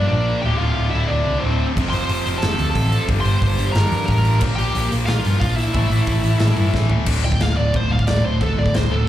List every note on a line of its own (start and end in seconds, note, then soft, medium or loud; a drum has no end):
0.00 0.43 A#2 medium
0.00 0.11 F3 medium
0.00 0.45 F3 medium
0.00 0.11 A#3 medium
0.00 0.43 A#3 medium
0.00 0.44 A#3 loud
0.08 0.31 A#1 loud
0.08 0.28 A#2 medium
0.08 0.28 F3 loud
0.08 0.42 D4 medium
0.08 0.40 D5 medium
0.12 0.26 A#3 loud
0.28 0.43 A#2 medium
0.28 0.43 F3 medium
0.28 0.43 A#3 medium
0.42 0.54 D1 medium
0.42 0.60 D2 loud
0.42 0.60 A2 loud
0.42 0.59 D3 loud
0.42 0.60 G4 medium
0.42 0.57 G5 loud
0.58 0.70 D1 medium
0.58 0.76 D2 medium
0.58 0.76 A2 medium
0.58 0.77 D3 medium
0.58 0.90 F5 loud
0.62 0.92 F4 medium
0.77 0.87 D1 loud
0.77 0.94 D2 medium
0.77 0.94 A2 loud
0.77 0.93 D3 medium
0.90 1.03 D1 medium
0.90 1.10 D3 medium
0.90 1.09 E5 medium
0.95 1.09 D2 medium
0.95 1.09 A2 medium
0.95 1.10 E4 medium
1.08 1.20 D1 medium
1.08 1.27 D2 loud
1.08 1.27 A2 loud
1.08 1.26 D3 loud
1.08 1.42 D4 medium
1.08 1.39 D5 medium
1.26 1.36 C2 medium
1.26 1.42 D2 medium
1.26 1.43 A2 medium
1.26 1.43 D3 medium
1.40 1.60 D2 medium
1.40 1.65 C5 medium
1.44 1.64 D1 medium
1.44 1.59 A2 medium
1.44 1.59 D3 loud
1.44 1.67 C4 medium
1.60 1.76 D2 medium
1.60 1.76 A2 medium
1.60 1.76 D3 medium
1.77 1.87 F1 medium
1.77 1.93 F2 medium
1.77 1.93 C3 loud
1.77 1.92 F3 loud
1.77 kick loud
1.77 crash medium
1.90 2.03 F1 loud
1.90 2.10 F3 loud
1.90 2.38 C6 loud
1.90 open hi-hat medium
1.94 2.09 F2 medium
1.94 2.10 C3 medium
1.94 2.40 C5 medium
2.09 2.19 F1 loud
2.09 2.26 F2 loud
2.09 2.25 C3 medium
2.09 2.25 F3 loud
2.09 open hi-hat medium
2.26 2.37 F1 medium
2.26 2.43 F2 medium
2.26 2.43 C3 medium
2.26 2.44 F3 medium
2.26 open hi-hat medium
2.38 2.69 A5 loud
2.42 2.53 F1 medium
2.42 2.59 F2 medium
2.42 2.59 C3 loud
2.42 2.58 F3 loud
2.42 2.74 A4 medium
2.42 snare loud
2.42 open hi-hat medium
2.59 2.69 D2 medium
2.59 2.75 F2 medium
2.59 2.76 C3 medium
2.59 2.76 F3 medium
2.59 open hi-hat medium
2.71 3.04 A5 loud
2.75 2.96 A1 medium
2.75 2.93 F2 loud
2.75 2.93 C3 loud
2.75 2.92 F3 loud
2.75 3.07 A4 medium
2.75 kick medium
2.75 open hi-hat medium
2.92 3.09 F2 medium
2.92 3.09 C3 medium
2.92 3.09 F3 medium
2.92 open hi-hat medium
3.08 3.19 G1 medium
3.08 3.27 G2 loud
3.08 3.26 D3 loud
3.08 3.25 G3 loud
3.08 kick loud
3.08 open hi-hat medium
3.21 3.72 C5 medium
3.21 3.72 C6 loud
3.25 3.36 G1 medium
3.25 3.41 G2 medium
3.25 3.42 D3 medium
3.25 3.42 G3 medium
3.25 open hi-hat medium
3.42 3.52 G1 loud
3.42 3.59 G2 medium
3.42 3.58 D3 medium
3.42 3.58 G3 loud
3.42 kick medium
3.42 open hi-hat medium
3.59 3.69 G1 medium
3.59 3.74 G2 medium
3.59 3.74 D3 medium
3.59 3.74 G3 medium
3.59 open hi-hat medium
3.72 3.85 G1 loud
3.72 3.92 G2 loud
3.72 3.92 D3 loud
3.72 3.92 G3 loud
3.72 4.07 A#4 medium
3.72 4.05 A#5 loud
3.72 snare loud
3.72 open hi-hat medium
3.91 4.02 F2 medium
3.91 4.07 G2 medium
3.91 4.08 D3 medium
3.91 4.08 G3 medium
3.91 open hi-hat medium
4.06 4.41 A1 loud
4.06 4.26 G2 loud
4.06 4.25 D3 loud
4.06 4.25 G3 loud
4.06 4.40 A#4 medium
4.06 4.38 A#5 loud
4.06 kick medium
4.06 open hi-hat medium
4.25 4.42 G2 medium
4.25 4.42 D3 medium
4.25 4.42 G3 medium
4.25 open hi-hat medium
4.41 4.52 A#1 medium
4.41 4.59 A#2 loud
4.41 4.58 F3 loud
4.41 4.57 A#3 loud
4.41 kick loud
4.41 crash medium
4.56 4.68 A#1 medium
4.56 4.75 F3 medium
4.56 4.75 A#3 loud
4.56 4.90 G4 medium
4.56 4.88 G5 loud
4.56 open hi-hat medium
4.60 4.74 A#2 medium
4.75 4.85 A#1 loud
4.75 4.92 A#2 loud
4.75 4.92 F3 loud
4.75 4.91 A#3 loud
4.75 open hi-hat medium
4.92 5.02 A#1 medium
4.92 5.07 A#2 medium
4.92 5.07 F3 medium
4.92 5.08 A#3 medium
4.92 open hi-hat medium
5.06 5.18 A#1 medium
5.06 5.24 A#2 loud
5.06 5.24 F3 loud
5.06 5.23 A#3 loud
5.06 5.39 F4 medium
5.06 5.39 F5 loud
5.06 snare loud
5.06 open hi-hat medium
5.25 5.35 G2 medium
5.25 5.40 A#2 medium
5.25 5.41 F3 medium
5.25 5.40 A#3 loud
5.25 open hi-hat medium
5.40 5.62 A#1 loud
5.40 5.57 A#2 loud
5.40 5.57 F3 loud
5.40 5.56 A#3 loud
5.40 5.57 F4 medium
5.40 5.56 F5 medium
5.40 kick medium
5.40 open hi-hat medium
5.56 5.74 A#2 medium
5.56 5.74 F3 medium
5.56 5.74 A#3 medium
5.56 6.70 E4 medium
5.56 6.73 E5 medium
5.56 open hi-hat medium
5.74 5.85 A1 medium
5.74 5.90 A2 loud
5.74 5.90 E3 loud
5.74 5.89 A3 loud
5.74 kick loud
5.74 open hi-hat medium
5.90 6.01 A1 medium
5.90 6.06 A2 medium
5.90 6.06 E3 medium
5.90 6.07 A3 medium
5.90 open hi-hat medium
6.07 6.17 A1 loud
6.07 6.23 A2 medium
6.07 6.23 E3 medium
6.07 6.22 A3 loud
6.07 kick medium
6.07 open hi-hat medium
6.23 6.33 A1 medium
6.23 6.40 A2 medium
6.23 6.40 E3 medium
6.23 6.40 A3 medium
6.23 open hi-hat medium
6.40 6.51 A1 loud
6.40 6.58 A2 loud
6.40 6.57 E3 loud
6.40 6.56 A3 loud
6.40 snare loud
6.40 open hi-hat medium
6.57 6.67 G2 medium
6.57 6.72 A2 medium
6.57 6.72 E3 medium
6.57 6.73 A3 medium
6.57 open hi-hat medium
6.73 6.94 A1 loud
6.73 6.91 A2 medium
6.73 6.90 E3 loud
6.73 6.89 A3 medium
6.73 kick medium
6.73 snare medium
6.90 7.07 A2 medium
6.90 7.07 E3 medium
6.90 7.07 A3 loud
6.90 floor tom medium
7.06 7.21 D1 medium
7.06 7.59 D2 medium
7.06 7.57 A2 medium
7.06 7.57 D3 loud
7.06 kick loud
7.06 crash loud
7.06 crash medium
7.24 7.39 D1 medium
7.24 7.39 D2 medium
7.24 7.39 A2 medium
7.24 7.41 G5 medium
7.32 kick medium
7.40 7.55 D1 loud
7.40 7.55 D2 medium
7.40 7.56 A2 medium
7.40 7.56 F5 medium
7.40 snare loud
7.40 crash medium
7.57 7.72 D1 medium
7.57 8.06 D2 medium
7.57 8.07 A2 medium
7.57 8.06 D3 medium
7.57 7.74 D5 medium
7.74 7.89 D1 medium
7.74 7.89 D2 medium
7.74 7.89 A2 medium
7.74 7.91 C5 medium
7.74 kick loud
7.74 crash medium
7.91 8.05 D1 medium
7.91 8.06 D2 medium
7.91 8.06 A2 medium
7.91 8.07 F5 medium
7.99 kick medium
8.07 8.22 D1 medium
8.07 8.40 D2 medium
8.07 8.40 A2 medium
8.07 8.41 D3 medium
8.07 8.25 D5 medium
8.07 snare loud
8.07 crash medium
8.24 8.38 D1 medium
8.24 8.40 D2 medium
8.24 8.40 A2 medium
8.24 8.41 C5 medium
8.41 8.55 D1 medium
8.41 8.90 D2 loud
8.41 8.91 A2 loud
8.41 8.90 D3 loud
8.41 8.58 A4 medium
8.41 kick loud
8.41 crash medium
8.58 8.72 D1 medium
8.58 8.73 D2 medium
8.58 8.73 A2 medium
8.58 8.75 D5 medium
8.66 kick medium
8.74 8.88 D1 loud
8.74 8.90 D2 medium
8.74 8.90 A2 medium
8.74 8.91 C5 medium
8.74 snare loud
8.74 crash medium
8.90 9.05 D1 medium
8.90 9.09 D2 medium
8.90 9.09 A2 medium
8.90 9.09 D3 medium
8.90 9.07 A4 medium